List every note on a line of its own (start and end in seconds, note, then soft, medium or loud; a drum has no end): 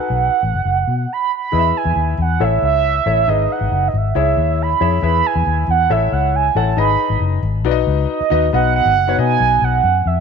0.00 0.38 D#4 medium
0.00 0.38 F#4 medium
0.00 0.38 A4 medium
0.00 0.41 B4 medium
0.00 1.10 F#5 loud
0.10 0.28 B1 medium
0.43 0.52 A1 medium
0.54 0.63 F#1 medium
0.65 0.83 F#1 medium
0.88 1.05 B2 medium
1.13 1.31 B5 medium
1.36 1.79 B5 loud
1.52 1.71 E2 medium
1.52 2.13 E4 medium
1.52 2.13 G#4 medium
1.52 2.13 B4 medium
1.52 1.58 D#5 medium
1.59 2.16 E5 medium
1.77 2.20 G#5 loud
1.85 1.95 E2 loud
1.96 2.14 D#2 medium
2.18 2.36 E2 loud
2.18 2.45 F#5 medium
2.40 2.58 A1 loud
2.40 2.93 E4 medium
2.40 2.93 A4 medium
2.40 2.93 C#5 medium
2.40 2.93 E5 medium
2.40 2.64 E5 medium
2.62 2.98 C#2 medium
2.62 3.31 E5 loud
3.06 3.24 A1 medium
3.06 3.21 E4 medium
3.06 3.21 A4 medium
3.06 3.21 C#5 medium
3.06 3.22 E5 medium
3.27 3.46 G#1 loud
3.27 3.88 D#4 medium
3.27 3.88 G#4 medium
3.27 3.88 B4 medium
3.27 3.89 D#5 medium
3.27 3.53 D#5 loud
3.52 3.89 F#5 medium
3.61 3.70 G#1 loud
3.71 3.90 F#1 loud
3.88 3.98 D#5 medium
3.93 4.12 G#1 medium
3.93 4.64 E5 medium
4.15 4.33 C#2 medium
4.15 4.68 E4 medium
4.15 4.68 G#4 medium
4.15 4.68 C#5 medium
4.15 4.68 E5 medium
4.37 4.73 D#2 medium
4.62 5.04 B5 loud
4.80 4.99 F2 medium
4.80 4.96 E4 medium
4.80 4.96 G#4 medium
4.80 4.96 C#5 medium
4.80 4.96 E5 medium
5.02 5.21 E2 loud
5.02 5.63 E4 medium
5.02 5.63 G#4 medium
5.02 5.63 B4 medium
5.02 5.63 E5 medium
5.02 5.28 B5 loud
5.26 5.69 G#5 medium
5.36 5.45 E2 loud
5.46 5.65 D#2 loud
5.68 5.86 E2 medium
5.68 5.93 F#5 medium
5.90 6.08 A1 loud
5.90 6.43 E4 medium
5.90 6.43 A4 medium
5.90 6.43 C#5 medium
5.90 6.43 E5 medium
5.90 6.14 E5 medium
6.12 6.48 C#2 medium
6.12 6.37 F#5 medium
6.36 6.58 G#5 medium
6.55 6.74 A1 medium
6.55 6.71 E4 medium
6.55 6.71 A4 medium
6.55 6.71 C#5 medium
6.55 6.71 F#5 medium
6.55 6.78 A5 medium
6.77 6.95 G#1 loud
6.77 7.37 D#4 medium
6.77 7.38 G#4 medium
6.77 7.38 B4 medium
6.77 7.38 D#5 medium
6.77 7.19 B5 loud
7.10 7.19 G#1 loud
7.20 7.39 F#1 medium
7.43 7.65 G#1 loud
7.65 7.83 B1 loud
7.65 8.18 D#4 loud
7.65 8.18 F#4 medium
7.65 8.18 B4 medium
7.65 7.71 D5 medium
7.71 8.21 D#5 loud
7.87 8.05 C#2 medium
8.10 8.50 D#5 medium
8.20 muted fingered electric bass stroke soft
8.30 8.49 D#2 medium
8.30 8.46 D#4 medium
8.30 8.46 F#4 medium
8.30 8.46 B4 medium
8.30 8.46 D#5 loud
8.53 8.80 B1 loud
8.53 8.90 B3 medium
8.53 8.90 D#4 medium
8.53 8.91 F#4 medium
8.53 8.91 B4 medium
8.53 8.91 D#5 medium
8.53 8.74 F#5 loud
8.76 9.16 F#5 loud
8.85 8.96 G#1 loud
8.96 9.14 F#1 loud
9.07 9.15 B3 medium
9.07 9.15 D#4 medium
9.07 9.15 F#4 medium
9.07 9.15 B4 medium
9.07 9.16 C#5 medium
9.17 9.36 B2 loud
9.17 9.78 B3 medium
9.17 9.78 D#4 medium
9.17 9.78 F#4 medium
9.17 9.79 B4 medium
9.17 9.79 D#5 medium
9.17 9.66 G#5 loud
9.40 9.58 B1 loud
9.62 9.80 B1 medium
9.62 10.09 F#5 loud
9.83 10.02 F#2 medium
10.06 10.20 F2 medium
10.06 10.20 E5 medium